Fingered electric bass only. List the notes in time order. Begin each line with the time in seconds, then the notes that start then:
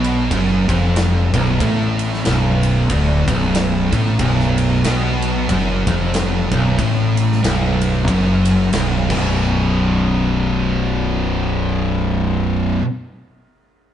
Already playing: B1
0.31 F#1
0.69 F1
1.34 B0
1.60 A1
2.26 B0
2.90 D1
3.27 B0
3.93 A1
4.20 B0
4.84 B1
5.49 F#1
5.87 F1
6.52 B0
6.79 A1
7.44 B0
8.08 F#1
8.74 B0
9.10 B0